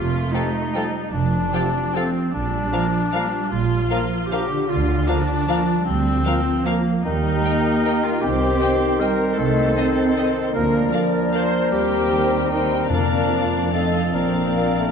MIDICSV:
0, 0, Header, 1, 12, 480
1, 0, Start_track
1, 0, Key_signature, -2, "major"
1, 0, Tempo, 397088
1, 1378, Time_signature, 3, 2, 24, 8
1, 5216, Tempo, 390371
1, 16256, Tempo, 429492
1, 18068, End_track
2, 0, Start_track
2, 0, Title_t, "Flute section"
2, 0, Program_c, 0, 73
2, 411, Note_on_c, 0, 79, 46
2, 499, Note_off_c, 0, 79, 0
2, 889, Note_on_c, 0, 79, 47
2, 976, Note_off_c, 0, 79, 0
2, 1848, Note_on_c, 0, 79, 47
2, 1940, Note_off_c, 0, 79, 0
2, 2362, Note_on_c, 0, 79, 46
2, 2447, Note_off_c, 0, 79, 0
2, 3288, Note_on_c, 0, 77, 49
2, 3376, Note_off_c, 0, 77, 0
2, 3792, Note_on_c, 0, 77, 53
2, 3876, Note_off_c, 0, 77, 0
2, 4725, Note_on_c, 0, 77, 48
2, 4814, Note_off_c, 0, 77, 0
2, 5209, Note_on_c, 0, 77, 52
2, 5295, Note_off_c, 0, 77, 0
2, 6160, Note_on_c, 0, 77, 50
2, 6249, Note_off_c, 0, 77, 0
2, 6646, Note_on_c, 0, 77, 52
2, 6732, Note_off_c, 0, 77, 0
2, 7598, Note_on_c, 0, 77, 51
2, 7688, Note_off_c, 0, 77, 0
2, 8104, Note_on_c, 0, 77, 53
2, 8192, Note_off_c, 0, 77, 0
2, 8583, Note_on_c, 0, 79, 64
2, 11399, Note_off_c, 0, 79, 0
2, 11456, Note_on_c, 0, 75, 57
2, 12881, Note_off_c, 0, 75, 0
2, 12884, Note_on_c, 0, 74, 55
2, 14324, Note_on_c, 0, 72, 54
2, 14326, Note_off_c, 0, 74, 0
2, 15432, Note_off_c, 0, 72, 0
2, 15775, Note_on_c, 0, 74, 46
2, 16717, Note_off_c, 0, 74, 0
2, 16740, Note_on_c, 0, 75, 41
2, 17196, Note_off_c, 0, 75, 0
2, 17200, Note_on_c, 0, 74, 44
2, 18068, Note_off_c, 0, 74, 0
2, 18068, End_track
3, 0, Start_track
3, 0, Title_t, "Violin section"
3, 0, Program_c, 1, 48
3, 413, Note_on_c, 1, 79, 47
3, 510, Note_off_c, 1, 79, 0
3, 906, Note_on_c, 1, 79, 43
3, 1002, Note_off_c, 1, 79, 0
3, 1851, Note_on_c, 1, 79, 50
3, 1948, Note_off_c, 1, 79, 0
3, 2356, Note_on_c, 1, 79, 45
3, 2452, Note_off_c, 1, 79, 0
3, 3303, Note_on_c, 1, 77, 46
3, 3400, Note_off_c, 1, 77, 0
3, 3787, Note_on_c, 1, 77, 46
3, 3883, Note_off_c, 1, 77, 0
3, 4724, Note_on_c, 1, 77, 51
3, 4821, Note_off_c, 1, 77, 0
3, 5222, Note_on_c, 1, 77, 51
3, 5320, Note_off_c, 1, 77, 0
3, 6162, Note_on_c, 1, 77, 50
3, 6260, Note_off_c, 1, 77, 0
3, 6653, Note_on_c, 1, 77, 50
3, 6752, Note_off_c, 1, 77, 0
3, 7607, Note_on_c, 1, 77, 54
3, 7705, Note_off_c, 1, 77, 0
3, 8107, Note_on_c, 1, 77, 49
3, 8205, Note_off_c, 1, 77, 0
3, 9068, Note_on_c, 1, 79, 52
3, 9166, Note_off_c, 1, 79, 0
3, 9566, Note_on_c, 1, 79, 47
3, 9664, Note_off_c, 1, 79, 0
3, 10505, Note_on_c, 1, 79, 53
3, 10604, Note_off_c, 1, 79, 0
3, 10997, Note_on_c, 1, 79, 45
3, 11096, Note_off_c, 1, 79, 0
3, 11928, Note_on_c, 1, 75, 47
3, 12027, Note_off_c, 1, 75, 0
3, 12415, Note_on_c, 1, 75, 46
3, 12513, Note_off_c, 1, 75, 0
3, 13354, Note_on_c, 1, 77, 47
3, 13453, Note_off_c, 1, 77, 0
3, 13845, Note_on_c, 1, 77, 41
3, 13943, Note_off_c, 1, 77, 0
3, 14324, Note_on_c, 1, 79, 46
3, 15250, Note_off_c, 1, 79, 0
3, 15293, Note_on_c, 1, 79, 46
3, 15757, Note_off_c, 1, 79, 0
3, 15767, Note_on_c, 1, 77, 47
3, 16714, Note_off_c, 1, 77, 0
3, 16730, Note_on_c, 1, 77, 42
3, 17190, Note_off_c, 1, 77, 0
3, 17202, Note_on_c, 1, 77, 40
3, 18068, Note_off_c, 1, 77, 0
3, 18068, End_track
4, 0, Start_track
4, 0, Title_t, "Violin section"
4, 0, Program_c, 2, 48
4, 410, Note_on_c, 2, 77, 44
4, 413, Note_on_c, 2, 69, 42
4, 507, Note_off_c, 2, 77, 0
4, 510, Note_off_c, 2, 69, 0
4, 911, Note_on_c, 2, 77, 48
4, 913, Note_on_c, 2, 69, 46
4, 1008, Note_off_c, 2, 77, 0
4, 1010, Note_off_c, 2, 69, 0
4, 1858, Note_on_c, 2, 69, 46
4, 1859, Note_on_c, 2, 77, 48
4, 1954, Note_off_c, 2, 69, 0
4, 1955, Note_off_c, 2, 77, 0
4, 2357, Note_on_c, 2, 69, 48
4, 2358, Note_on_c, 2, 77, 51
4, 2454, Note_off_c, 2, 69, 0
4, 2454, Note_off_c, 2, 77, 0
4, 3305, Note_on_c, 2, 77, 48
4, 3306, Note_on_c, 2, 70, 47
4, 3402, Note_off_c, 2, 77, 0
4, 3403, Note_off_c, 2, 70, 0
4, 3797, Note_on_c, 2, 77, 52
4, 3798, Note_on_c, 2, 70, 46
4, 3894, Note_off_c, 2, 70, 0
4, 3894, Note_off_c, 2, 77, 0
4, 4729, Note_on_c, 2, 70, 48
4, 4732, Note_on_c, 2, 77, 46
4, 4825, Note_off_c, 2, 70, 0
4, 4829, Note_off_c, 2, 77, 0
4, 5211, Note_on_c, 2, 77, 50
4, 5215, Note_on_c, 2, 70, 51
4, 5310, Note_off_c, 2, 77, 0
4, 5313, Note_off_c, 2, 70, 0
4, 6146, Note_on_c, 2, 77, 50
4, 6150, Note_on_c, 2, 70, 48
4, 6245, Note_off_c, 2, 77, 0
4, 6248, Note_off_c, 2, 70, 0
4, 6643, Note_on_c, 2, 77, 50
4, 6646, Note_on_c, 2, 70, 52
4, 6741, Note_off_c, 2, 77, 0
4, 6744, Note_off_c, 2, 70, 0
4, 7600, Note_on_c, 2, 70, 51
4, 7605, Note_on_c, 2, 77, 51
4, 7698, Note_off_c, 2, 70, 0
4, 7703, Note_off_c, 2, 77, 0
4, 8093, Note_on_c, 2, 70, 52
4, 8097, Note_on_c, 2, 77, 50
4, 8192, Note_off_c, 2, 70, 0
4, 8195, Note_off_c, 2, 77, 0
4, 9064, Note_on_c, 2, 70, 54
4, 9064, Note_on_c, 2, 75, 55
4, 9162, Note_off_c, 2, 75, 0
4, 9163, Note_off_c, 2, 70, 0
4, 9563, Note_on_c, 2, 70, 49
4, 9564, Note_on_c, 2, 75, 51
4, 9661, Note_off_c, 2, 70, 0
4, 9662, Note_off_c, 2, 75, 0
4, 10487, Note_on_c, 2, 75, 52
4, 10488, Note_on_c, 2, 72, 51
4, 10585, Note_off_c, 2, 75, 0
4, 10586, Note_off_c, 2, 72, 0
4, 10980, Note_on_c, 2, 72, 51
4, 10980, Note_on_c, 2, 75, 49
4, 11078, Note_off_c, 2, 72, 0
4, 11079, Note_off_c, 2, 75, 0
4, 11925, Note_on_c, 2, 75, 45
4, 11926, Note_on_c, 2, 72, 46
4, 12023, Note_off_c, 2, 75, 0
4, 12025, Note_off_c, 2, 72, 0
4, 12410, Note_on_c, 2, 75, 49
4, 12414, Note_on_c, 2, 72, 47
4, 12508, Note_off_c, 2, 75, 0
4, 12512, Note_off_c, 2, 72, 0
4, 13350, Note_on_c, 2, 74, 45
4, 13352, Note_on_c, 2, 70, 45
4, 13449, Note_off_c, 2, 74, 0
4, 13450, Note_off_c, 2, 70, 0
4, 13850, Note_on_c, 2, 70, 45
4, 13854, Note_on_c, 2, 74, 46
4, 13949, Note_off_c, 2, 70, 0
4, 13952, Note_off_c, 2, 74, 0
4, 14326, Note_on_c, 2, 72, 52
4, 14327, Note_on_c, 2, 70, 46
4, 15251, Note_off_c, 2, 70, 0
4, 15251, Note_off_c, 2, 72, 0
4, 15298, Note_on_c, 2, 72, 46
4, 15304, Note_on_c, 2, 70, 45
4, 15760, Note_off_c, 2, 72, 0
4, 15762, Note_off_c, 2, 70, 0
4, 15773, Note_on_c, 2, 74, 44
4, 15777, Note_on_c, 2, 70, 46
4, 16716, Note_off_c, 2, 74, 0
4, 16718, Note_off_c, 2, 70, 0
4, 16738, Note_on_c, 2, 69, 44
4, 16740, Note_on_c, 2, 75, 42
4, 17194, Note_off_c, 2, 69, 0
4, 17205, Note_off_c, 2, 75, 0
4, 17210, Note_on_c, 2, 70, 41
4, 17211, Note_on_c, 2, 74, 40
4, 18068, Note_off_c, 2, 70, 0
4, 18068, Note_off_c, 2, 74, 0
4, 18068, End_track
5, 0, Start_track
5, 0, Title_t, "Oboe"
5, 0, Program_c, 3, 68
5, 419, Note_on_c, 3, 69, 44
5, 594, Note_off_c, 3, 69, 0
5, 907, Note_on_c, 3, 69, 44
5, 1078, Note_off_c, 3, 69, 0
5, 1860, Note_on_c, 3, 69, 43
5, 2041, Note_off_c, 3, 69, 0
5, 2368, Note_on_c, 3, 69, 50
5, 2536, Note_off_c, 3, 69, 0
5, 3289, Note_on_c, 3, 70, 43
5, 3466, Note_off_c, 3, 70, 0
5, 3790, Note_on_c, 3, 70, 48
5, 3959, Note_off_c, 3, 70, 0
5, 4729, Note_on_c, 3, 70, 44
5, 4906, Note_off_c, 3, 70, 0
5, 5229, Note_on_c, 3, 70, 49
5, 5396, Note_off_c, 3, 70, 0
5, 6167, Note_on_c, 3, 70, 49
5, 6343, Note_off_c, 3, 70, 0
5, 6658, Note_on_c, 3, 70, 50
5, 6826, Note_off_c, 3, 70, 0
5, 7613, Note_on_c, 3, 70, 48
5, 7790, Note_off_c, 3, 70, 0
5, 8111, Note_on_c, 3, 70, 52
5, 8286, Note_off_c, 3, 70, 0
5, 8591, Note_on_c, 3, 70, 59
5, 9975, Note_off_c, 3, 70, 0
5, 10018, Note_on_c, 3, 72, 58
5, 12827, Note_off_c, 3, 72, 0
5, 12876, Note_on_c, 3, 70, 58
5, 15718, Note_off_c, 3, 70, 0
5, 15769, Note_on_c, 3, 70, 45
5, 16386, Note_off_c, 3, 70, 0
5, 16733, Note_on_c, 3, 69, 41
5, 17201, Note_on_c, 3, 70, 43
5, 17218, Note_off_c, 3, 69, 0
5, 18068, Note_off_c, 3, 70, 0
5, 18068, End_track
6, 0, Start_track
6, 0, Title_t, "Clarinet"
6, 0, Program_c, 4, 71
6, 0, Note_on_c, 4, 65, 81
6, 407, Note_on_c, 4, 63, 71
6, 425, Note_off_c, 4, 65, 0
6, 1364, Note_off_c, 4, 63, 0
6, 1372, Note_on_c, 4, 62, 82
6, 2359, Note_on_c, 4, 60, 80
6, 2377, Note_off_c, 4, 62, 0
6, 2823, Note_off_c, 4, 60, 0
6, 2830, Note_on_c, 4, 62, 82
6, 4226, Note_off_c, 4, 62, 0
6, 4252, Note_on_c, 4, 65, 88
6, 4862, Note_off_c, 4, 65, 0
6, 5219, Note_on_c, 4, 67, 85
6, 5680, Note_on_c, 4, 65, 84
6, 5698, Note_off_c, 4, 67, 0
6, 6149, Note_off_c, 4, 65, 0
6, 6156, Note_on_c, 4, 62, 79
6, 7099, Note_off_c, 4, 62, 0
6, 7111, Note_on_c, 4, 60, 93
6, 8090, Note_on_c, 4, 58, 85
6, 8108, Note_off_c, 4, 60, 0
6, 8574, Note_off_c, 4, 58, 0
6, 8582, Note_on_c, 4, 63, 94
6, 9795, Note_on_c, 4, 65, 76
6, 9813, Note_off_c, 4, 63, 0
6, 10005, Note_on_c, 4, 67, 94
6, 10023, Note_off_c, 4, 65, 0
6, 10975, Note_on_c, 4, 70, 94
6, 10993, Note_off_c, 4, 67, 0
6, 11449, Note_on_c, 4, 69, 77
6, 11467, Note_off_c, 4, 70, 0
6, 12664, Note_off_c, 4, 69, 0
6, 12873, Note_on_c, 4, 70, 83
6, 13485, Note_off_c, 4, 70, 0
6, 13836, Note_on_c, 4, 72, 80
6, 14319, Note_on_c, 4, 67, 84
6, 14337, Note_off_c, 4, 72, 0
6, 15288, Note_off_c, 4, 67, 0
6, 15296, Note_on_c, 4, 63, 67
6, 15763, Note_on_c, 4, 62, 76
6, 15782, Note_off_c, 4, 63, 0
6, 16734, Note_on_c, 4, 60, 61
6, 16751, Note_off_c, 4, 62, 0
6, 17189, Note_off_c, 4, 60, 0
6, 17195, Note_on_c, 4, 60, 70
6, 18068, Note_off_c, 4, 60, 0
6, 18068, End_track
7, 0, Start_track
7, 0, Title_t, "Viola section"
7, 0, Program_c, 5, 48
7, 0, Note_on_c, 5, 65, 67
7, 408, Note_off_c, 5, 65, 0
7, 414, Note_on_c, 5, 63, 66
7, 1378, Note_off_c, 5, 63, 0
7, 1380, Note_on_c, 5, 62, 65
7, 2342, Note_off_c, 5, 62, 0
7, 2367, Note_on_c, 5, 60, 61
7, 2830, Note_off_c, 5, 60, 0
7, 2835, Note_on_c, 5, 62, 66
7, 4229, Note_off_c, 5, 62, 0
7, 4262, Note_on_c, 5, 65, 74
7, 5203, Note_off_c, 5, 65, 0
7, 5219, Note_on_c, 5, 67, 66
7, 5677, Note_on_c, 5, 65, 66
7, 5685, Note_off_c, 5, 67, 0
7, 6144, Note_off_c, 5, 65, 0
7, 6162, Note_on_c, 5, 62, 72
7, 7121, Note_off_c, 5, 62, 0
7, 7127, Note_on_c, 5, 60, 73
7, 8083, Note_off_c, 5, 60, 0
7, 8093, Note_on_c, 5, 58, 66
7, 8585, Note_off_c, 5, 58, 0
7, 8586, Note_on_c, 5, 63, 75
7, 9772, Note_off_c, 5, 63, 0
7, 9808, Note_on_c, 5, 65, 68
7, 10024, Note_on_c, 5, 67, 77
7, 10027, Note_off_c, 5, 65, 0
7, 10985, Note_on_c, 5, 70, 70
7, 10986, Note_off_c, 5, 67, 0
7, 11440, Note_off_c, 5, 70, 0
7, 11451, Note_on_c, 5, 69, 63
7, 12878, Note_on_c, 5, 70, 67
7, 12879, Note_off_c, 5, 69, 0
7, 13828, Note_off_c, 5, 70, 0
7, 13862, Note_on_c, 5, 72, 66
7, 14321, Note_off_c, 5, 72, 0
7, 14334, Note_on_c, 5, 67, 65
7, 15284, Note_off_c, 5, 67, 0
7, 15296, Note_on_c, 5, 63, 55
7, 15768, Note_off_c, 5, 63, 0
7, 15773, Note_on_c, 5, 62, 54
7, 16717, Note_off_c, 5, 62, 0
7, 16736, Note_on_c, 5, 60, 51
7, 17185, Note_off_c, 5, 60, 0
7, 17198, Note_on_c, 5, 60, 51
7, 18068, Note_off_c, 5, 60, 0
7, 18068, End_track
8, 0, Start_track
8, 0, Title_t, "French horn section"
8, 0, Program_c, 6, 60
8, 412, Note_on_c, 6, 67, 44
8, 415, Note_on_c, 6, 57, 48
8, 589, Note_off_c, 6, 67, 0
8, 591, Note_off_c, 6, 57, 0
8, 894, Note_on_c, 6, 57, 47
8, 896, Note_on_c, 6, 67, 47
8, 1068, Note_off_c, 6, 57, 0
8, 1070, Note_off_c, 6, 67, 0
8, 1857, Note_on_c, 6, 67, 50
8, 1858, Note_on_c, 6, 57, 51
8, 2038, Note_off_c, 6, 67, 0
8, 2039, Note_off_c, 6, 57, 0
8, 2352, Note_on_c, 6, 67, 49
8, 2354, Note_on_c, 6, 57, 49
8, 2524, Note_off_c, 6, 67, 0
8, 2525, Note_off_c, 6, 57, 0
8, 3289, Note_on_c, 6, 65, 49
8, 3294, Note_on_c, 6, 58, 49
8, 3466, Note_off_c, 6, 65, 0
8, 3470, Note_off_c, 6, 58, 0
8, 3789, Note_on_c, 6, 58, 49
8, 3794, Note_on_c, 6, 65, 48
8, 3959, Note_off_c, 6, 58, 0
8, 3963, Note_off_c, 6, 65, 0
8, 4731, Note_on_c, 6, 65, 48
8, 4735, Note_on_c, 6, 58, 53
8, 4908, Note_off_c, 6, 65, 0
8, 4910, Note_off_c, 6, 58, 0
8, 5222, Note_on_c, 6, 58, 47
8, 5226, Note_on_c, 6, 65, 53
8, 5391, Note_off_c, 6, 58, 0
8, 5394, Note_off_c, 6, 65, 0
8, 6162, Note_on_c, 6, 65, 56
8, 6166, Note_on_c, 6, 58, 55
8, 6339, Note_off_c, 6, 65, 0
8, 6342, Note_off_c, 6, 58, 0
8, 6655, Note_on_c, 6, 65, 52
8, 6657, Note_on_c, 6, 58, 53
8, 6824, Note_off_c, 6, 65, 0
8, 6825, Note_off_c, 6, 58, 0
8, 7603, Note_on_c, 6, 65, 55
8, 7610, Note_on_c, 6, 58, 55
8, 7782, Note_off_c, 6, 65, 0
8, 7787, Note_off_c, 6, 58, 0
8, 8109, Note_on_c, 6, 65, 51
8, 8110, Note_on_c, 6, 58, 53
8, 8285, Note_off_c, 6, 58, 0
8, 8285, Note_off_c, 6, 65, 0
8, 8599, Note_on_c, 6, 58, 57
8, 8606, Note_on_c, 6, 67, 55
8, 9979, Note_off_c, 6, 58, 0
8, 9982, Note_off_c, 6, 67, 0
8, 10018, Note_on_c, 6, 60, 61
8, 10024, Note_on_c, 6, 63, 64
8, 12827, Note_off_c, 6, 60, 0
8, 12830, Note_off_c, 6, 63, 0
8, 12885, Note_on_c, 6, 62, 54
8, 12886, Note_on_c, 6, 58, 55
8, 14327, Note_off_c, 6, 62, 0
8, 14334, Note_on_c, 6, 60, 52
8, 15746, Note_off_c, 6, 60, 0
8, 15758, Note_off_c, 6, 58, 0
8, 15773, Note_on_c, 6, 58, 43
8, 15779, Note_on_c, 6, 62, 43
8, 16716, Note_off_c, 6, 58, 0
8, 16719, Note_off_c, 6, 62, 0
8, 16730, Note_on_c, 6, 57, 41
8, 16732, Note_on_c, 6, 63, 37
8, 17062, Note_off_c, 6, 63, 0
8, 17065, Note_off_c, 6, 57, 0
8, 17203, Note_on_c, 6, 62, 40
8, 17204, Note_on_c, 6, 58, 43
8, 18068, Note_off_c, 6, 58, 0
8, 18068, Note_off_c, 6, 62, 0
8, 18068, End_track
9, 0, Start_track
9, 0, Title_t, "Cello section"
9, 0, Program_c, 7, 48
9, 0, Note_on_c, 7, 57, 59
9, 903, Note_off_c, 7, 57, 0
9, 903, Note_on_c, 7, 55, 52
9, 1375, Note_on_c, 7, 53, 56
9, 1377, Note_off_c, 7, 55, 0
9, 2823, Note_on_c, 7, 55, 59
9, 2825, Note_off_c, 7, 53, 0
9, 3282, Note_off_c, 7, 55, 0
9, 3294, Note_on_c, 7, 53, 53
9, 3782, Note_off_c, 7, 53, 0
9, 3783, Note_on_c, 7, 55, 57
9, 4708, Note_off_c, 7, 55, 0
9, 4730, Note_on_c, 7, 53, 59
9, 5209, Note_off_c, 7, 53, 0
9, 5217, Note_on_c, 7, 50, 65
9, 6646, Note_on_c, 7, 53, 60
9, 6650, Note_off_c, 7, 50, 0
9, 7110, Note_on_c, 7, 55, 65
9, 7116, Note_off_c, 7, 53, 0
9, 7585, Note_off_c, 7, 55, 0
9, 7593, Note_on_c, 7, 53, 58
9, 8585, Note_off_c, 7, 53, 0
9, 8593, Note_on_c, 7, 55, 61
9, 9060, Note_off_c, 7, 55, 0
9, 9068, Note_on_c, 7, 58, 63
9, 10023, Note_off_c, 7, 58, 0
9, 10023, Note_on_c, 7, 60, 68
9, 10982, Note_on_c, 7, 55, 60
9, 10986, Note_off_c, 7, 60, 0
9, 11448, Note_off_c, 7, 55, 0
9, 11451, Note_on_c, 7, 57, 67
9, 11922, Note_off_c, 7, 57, 0
9, 11924, Note_on_c, 7, 60, 61
9, 12880, Note_off_c, 7, 60, 0
9, 12881, Note_on_c, 7, 58, 62
9, 13343, Note_off_c, 7, 58, 0
9, 13349, Note_on_c, 7, 53, 54
9, 14322, Note_off_c, 7, 53, 0
9, 14326, Note_on_c, 7, 55, 56
9, 14794, Note_off_c, 7, 55, 0
9, 14803, Note_on_c, 7, 51, 49
9, 15769, Note_off_c, 7, 51, 0
9, 15771, Note_on_c, 7, 50, 44
9, 16247, Note_off_c, 7, 50, 0
9, 16263, Note_on_c, 7, 53, 47
9, 17186, Note_off_c, 7, 53, 0
9, 17203, Note_on_c, 7, 53, 46
9, 18068, Note_off_c, 7, 53, 0
9, 18068, End_track
10, 0, Start_track
10, 0, Title_t, "Bassoon"
10, 0, Program_c, 8, 70
10, 411, Note_on_c, 8, 53, 47
10, 588, Note_off_c, 8, 53, 0
10, 906, Note_on_c, 8, 53, 45
10, 1077, Note_off_c, 8, 53, 0
10, 1854, Note_on_c, 8, 53, 52
10, 2037, Note_off_c, 8, 53, 0
10, 2371, Note_on_c, 8, 53, 45
10, 2538, Note_off_c, 8, 53, 0
10, 3301, Note_on_c, 8, 53, 49
10, 3475, Note_off_c, 8, 53, 0
10, 3793, Note_on_c, 8, 53, 46
10, 3962, Note_off_c, 8, 53, 0
10, 4738, Note_on_c, 8, 53, 54
10, 4912, Note_off_c, 8, 53, 0
10, 5217, Note_on_c, 8, 53, 46
10, 5387, Note_off_c, 8, 53, 0
10, 6167, Note_on_c, 8, 53, 56
10, 6343, Note_off_c, 8, 53, 0
10, 6654, Note_on_c, 8, 53, 54
10, 6823, Note_off_c, 8, 53, 0
10, 7605, Note_on_c, 8, 53, 50
10, 7783, Note_off_c, 8, 53, 0
10, 8095, Note_on_c, 8, 53, 46
10, 8273, Note_off_c, 8, 53, 0
10, 8596, Note_on_c, 8, 51, 64
10, 11405, Note_off_c, 8, 51, 0
10, 11453, Note_on_c, 8, 51, 59
10, 12851, Note_off_c, 8, 51, 0
10, 12890, Note_on_c, 8, 53, 59
10, 14300, Note_off_c, 8, 53, 0
10, 14332, Note_on_c, 8, 55, 53
10, 15745, Note_off_c, 8, 55, 0
10, 15773, Note_on_c, 8, 53, 46
10, 16857, Note_off_c, 8, 53, 0
10, 17202, Note_on_c, 8, 53, 40
10, 17601, Note_off_c, 8, 53, 0
10, 17682, Note_on_c, 8, 58, 54
10, 17938, Note_on_c, 8, 57, 52
10, 17954, Note_off_c, 8, 58, 0
10, 18068, Note_off_c, 8, 57, 0
10, 18068, End_track
11, 0, Start_track
11, 0, Title_t, "Timpani"
11, 0, Program_c, 10, 47
11, 15773, Note_on_c, 10, 41, 61
11, 16450, Note_off_c, 10, 41, 0
11, 18068, End_track
12, 0, Start_track
12, 0, Title_t, "Double bass section"
12, 0, Program_c, 11, 48
12, 0, Note_on_c, 11, 29, 60
12, 334, Note_off_c, 11, 29, 0
12, 1387, Note_on_c, 11, 29, 61
12, 1779, Note_off_c, 11, 29, 0
12, 2824, Note_on_c, 11, 34, 60
12, 3210, Note_off_c, 11, 34, 0
12, 4252, Note_on_c, 11, 34, 61
12, 4643, Note_off_c, 11, 34, 0
12, 5689, Note_on_c, 11, 38, 61
12, 6077, Note_off_c, 11, 38, 0
12, 7121, Note_on_c, 11, 38, 63
12, 7516, Note_off_c, 11, 38, 0
12, 8593, Note_on_c, 11, 39, 65
12, 8986, Note_off_c, 11, 39, 0
12, 10027, Note_on_c, 11, 36, 61
12, 10411, Note_off_c, 11, 36, 0
12, 11454, Note_on_c, 11, 36, 62
12, 11841, Note_off_c, 11, 36, 0
12, 12882, Note_on_c, 11, 38, 57
12, 13271, Note_off_c, 11, 38, 0
12, 14326, Note_on_c, 11, 39, 49
12, 15721, Note_off_c, 11, 39, 0
12, 15768, Note_on_c, 11, 41, 47
12, 16714, Note_off_c, 11, 41, 0
12, 16737, Note_on_c, 11, 41, 49
12, 17194, Note_off_c, 11, 41, 0
12, 17209, Note_on_c, 11, 34, 43
12, 18068, Note_off_c, 11, 34, 0
12, 18068, End_track
0, 0, End_of_file